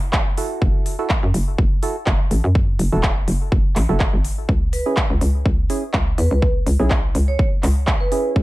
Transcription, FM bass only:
Already playing: F#1
0.62 F#1
1.23 F#2
1.34 F#1
1.58 F#1
2.07 F#1
2.31 A1
2.44 F#2
2.79 F#1
2.93 E1
3.28 F#1
3.52 F#1
3.76 A1
3.89 F#1
4.13 G#1
4.49 C#2
5.10 C#2
5.21 C#2
5.46 C#2
5.94 C#2
6.18 E2
6.31 C#2
6.67 C#2
6.80 B1
7.15 C#2
7.63 C#2
8.36 C#2

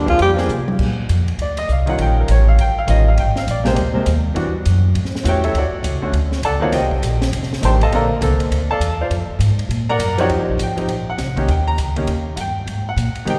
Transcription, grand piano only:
0.06 F3 A#3 C4 D4 G#4
0.36 F3 A#3 C4 D4 G#4
1.42 D5
1.58 D#5
1.72 F5
1.86 D#3 G3 C#4 F4 F#5
2.02 G5
2.20 A#4
2.31 C#5
2.49 F5
2.61 G5
2.79 F5
2.87 D#3 G3 C#4 F4 D#5
3.08 F5
3.19 G5
3.38 F5
3.51 D5
3.64 C3 G#3 A#3 G4 C5
3.94 C3 G#3 A#3 C4
4.34 E3 G3 D4 F#4
5.23 E3 A3 C#4 F#4
5.28 G4 C#5 E5 G5
5.44 E4 A4 C#5 E5
5.58 F#4 C#5 D5 F#5
6.02 D3 A3 C#4 F#4
6.45 A4 D5 F#5 A5
6.60 D#3 A#3 C4 F4 F#4 C#5 D5 F#5
6.73 G4 C5 D#5 G5
7.61 D#3 A3 D4 G4 C5 G5 A5 C6
7.83 A4 D#5 F5 A5
7.92 D3 A#3 C4 A4 A#4 D5 F5 A#5
8.21 D3 A#3 C4 A4
8.71 A4 D5 F5 A5
9.01 F4 C5 D5 F5
9.89 A#4 D5 F#5 A#5
10.18 F3 C4 D#4 F#4 G4 C#5 D5 F#5
10.63 G5
10.77 F3 C4 D#4 G4
11.10 F#5
11.36 D#3 A#3 C#4 G4
11.51 G5
11.68 A#5
11.96 D#3 A#3 C#4 G4
12.36 F#5
12.40 G5
12.89 F#5
13.25 D#3 G#3 C4 G4
13.30 G5

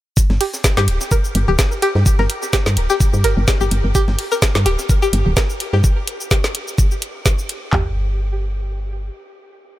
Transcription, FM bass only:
0.30 G1
0.77 G2
0.88 D1
1.35 G1
1.48 D1
1.95 G2
2.19 G1
2.66 G2
2.77 D1
3.13 G2
3.24 G1
3.37 G1
3.61 G1
3.71 G1
3.84 G1
4.08 G1
4.55 G2
4.66 D1
5.13 G1
5.26 D1
5.73 G2
7.73 G1

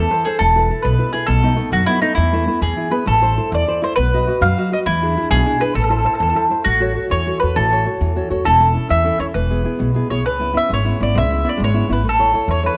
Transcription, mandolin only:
Already playing: A4
0.25 G#4
0.39 A4
0.82 B4
1.13 G#4
1.27 A4
1.73 F#4
1.86 E4
2.02 D#4
2.15 E4
2.62 G#4
2.92 B4
3.08 A4
3.55 D5
3.84 C5
3.96 B4
4.42 F5
4.73 D#5
4.86 E4
5.31 G#4
5.61 B4
5.75 A4
5.84 A4
5.91 A4
5.98 A4
6.06 A4
6.15 A4
6.22 A4
6.30 A4
6.36 A4
6.64 F#4
7.11 C#5
7.40 B4
7.56 A4
8.45 A4
8.90 E5
9.20 C#5
9.34 B4
10.10 C#5
10.26 B4
10.57 E5
10.74 C#5
11.03 D5
11.18 E5
11.49 D5
11.64 C#5
11.93 B4
12.09 A4
12.51 C#5
12.66 B4

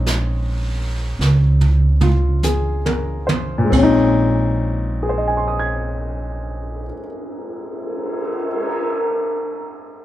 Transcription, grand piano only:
Already playing: G#3 C4 C#4 D#4
2.03 F4
2.44 G#4
2.86 A#4
3.27 C5
3.58 A#2
3.64 G#3
3.70 C4
3.77 C#4
3.83 D#4
5.03 G#4
5.09 C5
5.18 D#5
5.28 G#5
5.37 C6
5.48 D#6
5.59 G#6

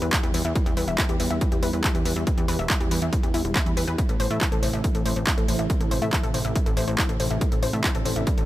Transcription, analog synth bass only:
0.02 E2
0.23 E2
0.34 E2
0.45 E2
0.66 E2
0.77 E2
0.88 E1
1.09 E2
1.20 E2
1.30 E2
1.52 E2
1.63 E2
1.73 E2
1.95 E2
2.05 E2
2.16 E2
2.38 E2
2.48 E2
2.59 E1
2.80 E2
2.91 E2
3.02 E2
3.23 E2
3.34 E2
3.45 E1
3.66 E2
3.77 E2
3.88 E2
4.09 A1
4.20 A1
4.30 A2
4.52 A1
4.63 A1
4.73 A1
4.95 A1
5.05 A1
5.16 A1
5.38 A1
5.48 A1
5.59 A1
5.80 A1
5.91 A1
6.02 A2
6.23 A1
6.34 A1
6.45 A1
6.66 A1
6.77 A1
6.88 A1
7.09 A1
7.20 A1
7.30 A1
7.52 A1
7.63 A1
7.73 A2
7.95 A1
8.05 A1
8.16 A1
8.38 A1

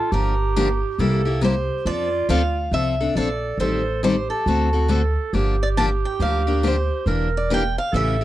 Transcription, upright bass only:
0.12 G1
0.98 C2
1.85 F2
2.29 D2
2.71 C2
3.16 A#1
3.58 A1
4.46 D2
5.33 G1
6.19 D2
7.06 E1
7.93 A1

